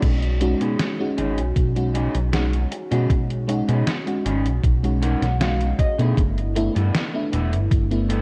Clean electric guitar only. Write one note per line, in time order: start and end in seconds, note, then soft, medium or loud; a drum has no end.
0.40 muted clean electric guitar stroke medium
0.60 0.79 C#4 medium
0.60 0.79 D#4 medium
0.60 0.79 G#4 medium
1.17 1.37 C#4 medium
1.17 1.38 D#4 medium
1.17 1.38 G#4 medium
1.94 2.14 C#4 medium
1.94 2.15 D#4 medium
1.94 2.15 G#4 medium
2.71 muted clean electric guitar stroke medium
2.91 3.10 C#4 medium
2.91 3.10 D#4 medium
2.91 3.10 G#4 medium
3.48 muted clean electric guitar stroke medium
3.68 3.87 C#4 medium
3.68 3.87 D#4 medium
3.68 3.87 G#4 medium
4.25 4.45 C#4 medium
4.25 4.45 D#4 medium
4.25 4.46 G#4 medium
5.02 5.22 C#4 medium
5.02 5.22 D#4 medium
5.02 5.22 A#4 loud
5.02 5.38 F#5 medium
5.41 5.77 F5 medium
5.79 6.15 D#5 medium
5.79 muted clean electric guitar stroke medium
5.98 6.18 C#4 medium
5.98 6.18 D#4 medium
5.98 6.18 G#4 medium
6.56 muted clean electric guitar stroke medium
6.75 6.94 B3 medium
6.75 6.95 E4 medium
6.75 6.95 A4 medium
7.32 7.53 B3 medium
7.32 7.53 E4 medium
7.32 7.53 A4 medium
8.09 8.22 B3 medium
8.09 8.22 E4 medium
8.09 8.22 A4 loud